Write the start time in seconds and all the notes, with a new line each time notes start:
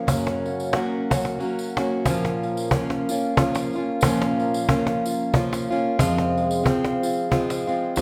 Already playing: C#4 F4 A#4
0.06 F#2 C#3 F#3 A#3 C#4 F#4 F#5, cajon bass, tambourine
0.27 cajon slap
0.46 C#4, tambourine
0.60 tambourine
0.73 F#3 A#3 C#4 F#4, cajon slap
1.10 F#3 A#3 C#4 F#4, cajon bass, tambourine
1.25 cajon slap
1.39 F#3 A#3 C#4 F#4, cajon slap, tambourine
1.59 tambourine
1.77 F#3 A#3 C#4 F#4, cajon slap, tambourine
2.05 A#2 F3 A#3 C#4 F4 A#4 F5, cajon bass, tambourine
2.25 cajon slap
2.43 A#3, cajon slap, tambourine
2.57 tambourine
2.71 F3 A#3 C#4 F4, cajon bass
2.90 cajon slap
3.09 A#3 C#4 F4, tambourine
3.36 F3 A#3 C#4 F4, cajon bass
3.55 cajon slap, tambourine
3.73 F4, tambourine
3.77 A#3 C#4
3.90 cajon slap
4.01 A#2 F3 A#3 C#4 F4, cajon bass, tambourine
4.22 cajon slap
4.39 A#3, cajon slap, tambourine
4.54 tambourine
4.68 F3 A#3 C#4 F4, cajon bass
4.87 cajon slap
5.06 F4, tambourine
5.33 F3 A#3 C#4 F4, cajon bass
5.53 cajon slap, tambourine
5.71 A#3 C#4 F4, tambourine
5.85 cajon slap
5.98 F2 C3 F3 G#3 C4 F4 G#4, cajon bass, tambourine
6.18 cajon slap
6.37 G#3, cajon slap, tambourine
6.51 tambourine
6.64 F3 G#3 C4 F4, cajon bass
6.85 cajon slap
7.03 F4, tambourine
7.31 F3 G#3 C4 F4, cajon bass
7.50 cajon slap, tambourine
7.67 F3 G#3 C4 F4, tambourine
7.83 cajon slap
7.96 F2 C3 F3 G#3 F4 D#5, cajon bass, cajon slap, tambourine